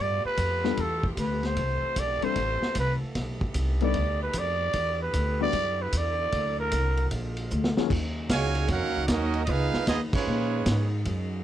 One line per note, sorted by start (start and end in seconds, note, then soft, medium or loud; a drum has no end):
0.00 0.23 G2 medium
0.00 4.70 A3 medium
0.00 1.55 B3 medium
0.00 1.56 F4 medium
0.00 1.55 G4 medium
0.00 0.25 D5 loud
0.25 0.82 B4 loud
0.25 muted upright bass stroke soft
0.37 0.77 F2 medium
0.37 kick soft
0.37 hi-hat pedal medium
0.37 ride medium
0.64 0.77 G3 medium
0.64 0.77 B3 medium
0.64 0.77 D4 medium
0.64 0.77 F4 medium
0.64 0.77 A4 medium
0.64 snare medium
0.77 1.16 E2 medium
0.77 1.06 A4 medium
0.77 kick soft
0.77 ride medium
1.03 kick medium
1.17 1.56 D2 medium
1.17 1.47 B4 medium
1.17 kick soft
1.17 hi-hat pedal medium
1.17 ride medium
1.43 2.01 C5 medium
1.43 snare soft
1.43 ride soft
1.57 1.82 C2 medium
1.57 3.14 E3 medium
1.57 3.14 C4 medium
1.57 3.14 G4 medium
1.57 kick soft
1.57 ride medium
1.83 muted upright bass stroke soft
1.96 2.21 B1 medium
1.96 2.26 D5 loud
1.96 kick soft
1.96 hi-hat pedal medium
1.96 ride medium
2.22 2.35 G3 medium
2.22 2.35 C4 medium
2.22 2.35 D4 medium
2.22 2.35 E4 medium
2.22 2.35 A4 medium
2.22 2.77 C5 loud
2.22 muted upright bass stroke soft
2.22 ride medium
2.36 2.61 A1 medium
2.36 kick soft
2.36 ride medium
2.62 muted upright bass stroke soft
2.62 snare soft
2.75 3.00 C2 medium
2.75 kick soft
2.75 hi-hat pedal medium
2.75 ride medium
2.79 2.94 B4 loud
3.03 muted upright bass stroke soft
3.15 3.54 B1 medium
3.15 6.17 B3 medium
3.15 4.74 D#4 medium
3.15 4.73 G4 medium
3.15 kick soft
3.15 snare soft
3.15 ride medium
3.41 kick medium
3.54 3.94 C2 medium
3.54 kick soft
3.54 hi-hat pedal medium
3.54 ride medium
3.81 3.94 G3 medium
3.81 3.94 B3 medium
3.81 3.94 D4 medium
3.81 3.94 D#4 medium
3.81 3.94 A4 medium
3.81 4.19 D5 loud
3.81 ride soft
3.94 4.33 D2 medium
3.94 kick soft
3.94 ride medium
4.22 4.40 B4 medium
4.33 4.73 F2 medium
4.33 kick soft
4.33 hi-hat pedal medium
4.33 ride medium
4.38 5.02 D5 loud
4.73 5.13 E2 medium
4.73 7.88 D3 medium
4.73 7.10 E4 medium
4.73 6.17 G4 medium
4.73 kick soft
4.73 ride medium
5.02 5.42 B4 medium
5.13 5.52 D2 medium
5.13 kick soft
5.13 hi-hat pedal medium
5.13 ride medium
5.40 5.52 G3 medium
5.40 5.52 B3 medium
5.40 5.52 D4 medium
5.40 5.53 E4 medium
5.40 5.52 F#4 medium
5.40 5.83 D5 loud
5.53 5.92 F#2 medium
5.53 kick soft
5.53 ride medium
5.82 5.99 B4 medium
5.92 6.31 E2 loud
5.92 kick soft
5.92 hi-hat pedal medium
5.92 ride medium
5.97 6.59 D5 loud
6.32 6.71 D2 medium
6.32 7.12 F#3 medium
6.32 7.90 A#3 medium
6.32 kick soft
6.32 ride medium
6.60 7.09 A#4 loud
6.71 7.10 C2 medium
6.71 kick soft
6.71 hi-hat pedal medium
6.71 ride medium
6.97 ride medium
7.11 7.50 A#1 medium
7.11 7.89 G#3 medium
7.11 7.90 F4 medium
7.11 kick soft
7.11 ride medium
7.37 ride medium
7.50 7.75 D2 loud
7.50 hi-hat pedal medium
7.64 snare medium
7.77 7.90 D#2 medium
7.77 7.89 F#3 medium
7.77 7.90 A#3 medium
7.77 7.89 C#4 medium
7.77 7.90 F4 medium
7.77 7.89 G#4 medium
7.77 muted upright bass stroke soft
7.77 snare medium
7.89 8.29 D#2 medium
7.89 9.46 C#3 medium
7.89 9.47 F#3 medium
7.89 9.46 G#3 medium
7.89 11.02 D#4 medium
7.89 kick medium
7.89 crash medium
8.29 8.68 C#2 loud
8.29 8.67 A#2 medium
8.29 8.67 C#3 medium
8.29 8.67 G#3 medium
8.29 8.67 F#4 medium
8.29 8.67 C#5 loud
8.29 8.67 F5 medium
8.29 8.67 G#5 loud
8.29 kick soft
8.29 snare medium
8.29 hi-hat pedal medium
8.29 ride medium
8.55 ride medium
8.68 8.83 F2 medium
8.68 9.05 A#3 loud
8.68 9.04 C#4 loud
8.68 9.05 C#4 medium
8.68 9.05 F#4 loud
8.68 9.05 A#4 medium
8.68 9.05 F#5 loud
8.68 kick soft
8.68 ride medium
8.72 9.06 F5 medium
8.83 8.96 D#2 medium
8.97 9.08 C#2 medium
9.06 9.47 D#2 loud
9.06 9.44 F#3 medium
9.06 9.44 A#3 medium
9.06 9.44 D#4 medium
9.06 9.10 D5 medium
9.06 kick soft
9.06 snare medium
9.06 hi-hat pedal medium
9.06 ride medium
9.10 9.44 C#4 medium
9.10 9.44 F#4 medium
9.10 9.44 A#4 medium
9.10 9.44 D#5 loud
9.34 ride medium
9.45 9.72 C#2 medium
9.45 11.04 D#3 medium
9.45 9.86 G#3 loud
9.45 9.87 B3 medium
9.45 9.88 F4 medium
9.45 9.49 D#5 medium
9.45 kick soft
9.45 ride medium
9.49 11.44 G#3 medium
9.49 9.88 D#4 medium
9.49 9.88 G#4 medium
9.49 11.05 B4 medium
9.49 9.89 B4 medium
9.49 9.89 F5 loud
9.73 muted upright bass stroke soft
9.73 snare soft
9.87 10.12 D#2 loud
9.87 9.99 G#3 medium
9.87 9.99 B3 medium
9.87 10.00 B3 medium
9.87 9.99 D#4 medium
9.87 10.00 F4 medium
9.87 10.00 G#4 medium
9.87 10.00 D#5 loud
9.87 kick soft
9.87 snare medium
9.87 hi-hat pedal medium
9.87 ride medium
10.13 10.88 F3 medium
10.13 10.89 G#3 medium
10.13 10.88 C#4 medium
10.13 10.89 F4 medium
10.13 10.89 G#4 medium
10.13 10.89 B4 medium
10.13 10.89 C#5 medium
10.13 muted upright bass stroke soft
10.13 kick loud
10.13 crash medium
10.27 10.65 A#2 medium
10.66 11.05 G#2 loud
10.66 kick soft
10.66 snare medium
10.66 hi-hat pedal medium
10.66 ride medium
11.05 11.44 F#2 medium
11.05 11.44 C#3 medium
11.05 11.44 D#4 medium
11.05 11.44 F#4 medium
11.05 kick soft
11.05 ride medium